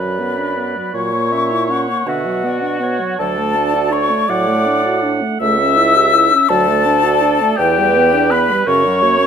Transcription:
Already playing: F#2 B4 D5 B5
0.01 F#3
0.20 B3
0.38 D4
0.57 B3
0.75 F#3
0.93 A#2 F#3 C#5 C#6
1.13 A#3
1.32 C#4 E5
1.51 E4
1.69 C#4 F#5
1.88 A#3
2.06 B2 D3 F#4 E5 F#5
2.25 F#3
2.45 B3 D5
2.63 D4
2.80 B3 C#5
3.00 F#3
3.18 D2 F#3 A4 D5 A5
3.38 A3
3.56 D4
3.75 F#4
3.91 D4 C#5 C#6
4.10 A3
4.29 A2 F#3 D5 F#5 D6
4.48 A3
4.67 D4
4.84 F#4
5.02 D4
5.22 A3
5.40 C#2 A3 E5 E6
5.58 C#4
5.77 E4
5.96 G4
6.14 E4
6.32 C#4
6.49 D2 F#3 A4 D5 A5
6.69 A3
6.86 D4
7.04 F#4
7.22 D4
7.40 A3
7.57 E2 E3 G4 B4 G5
7.78 G3
7.96 B3
8.14 D4
8.30 B3 B4 B5
8.50 G3
8.66 F#2 C#3 A#4 C#5 C#6
8.85 F#3
9.01 A#3 C#5
9.18 C#4

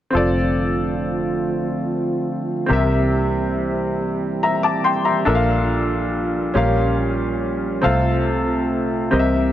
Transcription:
0.11 A3 C4 D4 F4
0.15 F1 D3 F3 A3 C4 F4 A4 D5
2.66 C3 C4 G4 A#4
2.71 C2 E3 G3 A#3 E4 G4 E5
4.43 E5 A#5
4.63 A5 D6
4.84 G5 C6
5.05 E5 A#5
5.25 A#1 A#2 F3 A#3 D4 F4 A4 A#4 E5
5.35 F5
6.54 A#1 A#2 G3 C#4 G4 A#4 F5
7.82 C3 A3 C4 F4 A4 F5
7.86 C2 A3 F4
9.11 C2 C3 E3 G3 A#3 C4 E4 G4 A#4 D#5
9.19 E5

